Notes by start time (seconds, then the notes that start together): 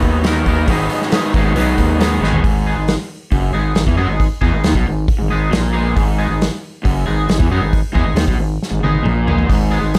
Already playing: D#3 F#3 B3 D#4 B4
0.02 D#2, kick, open hi-hat
0.23 D#3 F#3 B3 D#4 A#4 B4, snare, open hi-hat
0.45 D#2 D#3 F#3 B3 D#4 A#4 B4, kick, open hi-hat
0.65 G#1 G#2 D#3 G#3 B3 D#4 B4, kick, open hi-hat
0.69 F#3 B3 D#4 G#4
0.89 open hi-hat
1.02 snare
1.10 G#2 D#3 F#3 G#3 B3 D#4 B4, snare, open hi-hat
1.14 D#4 G#4
1.32 G#1 G#2 D#3 F#3 G#3 B3 D#4 B4, kick, open hi-hat
1.37 D#4 G#4
1.54 B1 G#2 D#3 F#3 G#3 B3 D#4 B4, open hi-hat
1.58 B3 D#4 G#4
1.78 D#2, kick, open hi-hat
1.99 G#2 D#3 F#3 G#3 B3 D#4 G#4 B4, snare, open hi-hat
2.21 G#1 G#2 D#3 F#3 G#3 B3 D#4 G#4 B4, snare
2.33 floor tom
2.44 G#1 G#2, kick, open hi-hat
2.67 G#3 B3 D#4 G#4
2.76 G#1 G#2
2.88 snare, open hi-hat
3.31 F#1 F#2, kick, open hi-hat
3.52 G#1 G#2 G#3 B3 D#4 G#4
3.75 G#1 G#2, snare, open hi-hat
3.86 E2 E3, kick
3.96 F#2 F#3 G#3 B3 D#4 G#4
4.08 G#1 G#2
4.20 kick, open hi-hat
4.41 E2 E3 G#3 B3 D#4 G#4, kick
4.53 G#1 G#2
4.64 D#2 D#3, snare, open hi-hat
4.75 B1 B2, kick
4.86 G#1 G#2
5.08 kick, open hi-hat
5.19 G#1 G#2
5.29 G#1 G#2 G#3 B3 D#4 G#4
5.51 A#1 A#2, snare, open hi-hat
5.73 G#3 B3 D#4 G#4
5.96 G#1 G#2, kick, open hi-hat
6.18 G#3 B3 D#4 G#4
6.28 G#1 G#2
6.41 snare, open hi-hat
6.83 F#1 F#2, kick, open hi-hat
7.06 G#1 G#2 G#3 B3 D#4 G#4
7.27 G#1 G#2, snare, open hi-hat
7.39 E2 E3, kick
7.51 F#2 F#3 G#3 B3 D#4 G#4
7.61 G#1 G#2
7.73 kick, open hi-hat
7.93 E2 E3 G#3 B3 D#4 G#4, kick
8.04 G#1 G#2
8.14 D#2 D#3, snare, open hi-hat
8.27 B1 B2, kick
8.37 G#1 G#2
8.62 snare
8.71 G#1 G#2
8.80 G#1 G#2 B3 D#4 G#4, high tom
8.85 G#3
8.95 high tom
9.03 A#1 A#2, mid tom
9.27 G#3 B3 D#4 G#4, floor tom
9.38 floor tom
9.47 G#1 G#2, kick, open hi-hat
9.71 G#3 B3 D#4 G#4
9.81 G#1 G#2
9.94 snare, open hi-hat